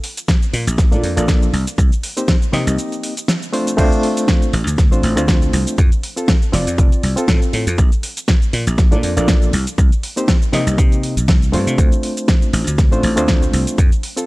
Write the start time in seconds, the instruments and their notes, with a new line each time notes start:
0.04 open hi-hat
0.17 closed hi-hat, cabasa
0.28 kick, snare, closed hi-hat, cabasa
0.42 closed hi-hat, cabasa
0.53 slap bass A#2, open hi-hat
0.67 slap bass A#1, closed hi-hat, cabasa
0.78 kick, snare, closed hi-hat, cabasa
0.92 slap bass A#2, reed electric piano A#3 D4 F4 A4 D5, closed hi-hat, cabasa
1.03 slap bass F2, open hi-hat
1.17 slap bass A#1, reed electric piano A#3 D4 F4 A4 D5, closed hi-hat, cabasa
1.28 kick, snare, closed hi-hat, cabasa
1.42 closed hi-hat, cabasa
1.53 slap bass C2, open hi-hat
1.67 closed hi-hat, cabasa
1.78 slap bass C2, kick, closed hi-hat, cabasa
1.92 closed hi-hat, cabasa
2.03 open hi-hat
2.17 reed electric piano A#3 C4 D#4 G4 C5, closed hi-hat, cabasa
2.28 kick, snare, closed hi-hat, cabasa
2.42 closed hi-hat, cabasa
2.52 slap bass C3, reed electric piano A#3 C4 D#4 G4 D#5, snare, open hi-hat
2.67 slap bass C2, closed hi-hat, cabasa
2.78 closed hi-hat, cabasa
2.92 closed hi-hat, cabasa
3.03 open hi-hat
3.17 closed hi-hat, cabasa
3.28 snare, closed hi-hat, cabasa
3.42 closed hi-hat, cabasa
3.52 reed electric piano A3 C4 D4 F4 C5, open hi-hat
3.67 closed hi-hat, cabasa
3.77 slap bass D2, reed electric piano A3 C4 D4 F4 C5, kick, closed hi-hat, crash, cabasa
3.92 closed hi-hat, cabasa
4.03 open hi-hat
4.17 closed hi-hat, cabasa
4.28 kick, snare, closed hi-hat, cabasa
4.42 closed hi-hat, cabasa
4.53 slap bass A1, open hi-hat
4.67 slap bass D2, closed hi-hat, cabasa
4.78 kick, snare, closed hi-hat, cabasa
4.91 slap bass A1, reed electric piano A3 C4 D4 F4 C5, closed hi-hat, cabasa
5.03 slap bass A1, open hi-hat
5.16 slap bass D2, reed electric piano A3 C4 D4 F4 C5, closed hi-hat, cabasa
5.28 kick, snare, closed hi-hat, cabasa
5.42 closed hi-hat, cabasa
5.53 slap bass C2, open hi-hat
5.67 closed hi-hat, cabasa
5.78 slap bass F2, kick, closed hi-hat, cabasa
5.92 closed hi-hat, cabasa
6.03 open hi-hat
6.17 reed electric piano C4 F4 A4, closed hi-hat, cabasa
6.28 kick, snare, closed hi-hat, cabasa
6.42 closed hi-hat, cabasa
6.52 slap bass F1, reed electric piano C4 F4 D5, snare, open hi-hat
6.67 slap bass F2, closed hi-hat, cabasa
6.78 slap bass F1, kick, closed hi-hat, cabasa
6.92 closed hi-hat, cabasa
7.03 slap bass C2, open hi-hat
7.16 reed electric piano C4 F4 A4, muted slap bass stroke, closed hi-hat, cabasa
7.28 slap bass A2, kick, snare, closed hi-hat, cabasa
7.42 closed hi-hat, cabasa
7.53 slap bass A2, open hi-hat
7.67 slap bass F2, closed hi-hat, cabasa
7.78 slap bass A#1, kick, closed hi-hat, cabasa
7.92 closed hi-hat, cabasa
8.03 open hi-hat
8.17 closed hi-hat, cabasa
8.28 kick, snare, closed hi-hat, cabasa
8.42 closed hi-hat, cabasa
8.53 slap bass A#2, open hi-hat
8.67 slap bass A#1, closed hi-hat, cabasa
8.78 kick, snare, closed hi-hat, cabasa
8.91 slap bass A#2, reed electric piano A#3 D4 F4 A4 D5, closed hi-hat, cabasa
9.03 slap bass F2, open hi-hat
9.17 slap bass A#1, reed electric piano A#3 D4 F4 A4 D5, closed hi-hat, cabasa
9.28 kick, snare, closed hi-hat, cabasa
9.42 closed hi-hat, cabasa
9.53 slap bass C2, open hi-hat
9.67 closed hi-hat, cabasa
9.78 slap bass C2, kick, closed hi-hat, cabasa
9.92 closed hi-hat, cabasa
10.03 open hi-hat
10.16 reed electric piano A#3 C4 D#4 G4 C5, closed hi-hat, cabasa
10.28 kick, snare, closed hi-hat, cabasa
10.42 closed hi-hat, cabasa
10.53 slap bass C3, reed electric piano A#3 C4 D#4 G4 D#5, snare, open hi-hat
10.67 slap bass C2, closed hi-hat, cabasa
10.78 slap bass C3, kick, closed hi-hat, cabasa
10.92 closed hi-hat, cabasa
11.03 open hi-hat
11.17 slap bass C2, closed hi-hat, cabasa
11.28 kick, snare, closed hi-hat, cabasa
11.42 closed hi-hat, cabasa
11.52 slap bass G2, reed electric piano A3 C4 D4 F4 C5, open hi-hat
11.67 slap bass C3, closed hi-hat, cabasa
11.78 slap bass D2, kick, closed hi-hat, cabasa
11.92 closed hi-hat, cabasa
12.03 open hi-hat
12.17 closed hi-hat, cabasa
12.28 kick, snare, closed hi-hat, cabasa
12.42 closed hi-hat, cabasa
12.53 slap bass A1, open hi-hat
12.67 slap bass D2, closed hi-hat, cabasa
12.78 kick, snare, closed hi-hat, cabasa
12.92 slap bass A1, reed electric piano A3 C4 D4 F4 C5, closed hi-hat, cabasa
13.03 slap bass A1, open hi-hat
13.16 slap bass D2, reed electric piano A3 C4 D4 F4 C5, closed hi-hat, cabasa
13.28 kick, snare, closed hi-hat, cabasa
13.42 closed hi-hat, cabasa
13.53 slap bass C2, open hi-hat
13.67 closed hi-hat, cabasa
13.78 slap bass F2, kick, closed hi-hat, cabasa
13.92 closed hi-hat, cabasa
14.03 open hi-hat
14.17 reed electric piano C4 F4 A4, closed hi-hat, cabasa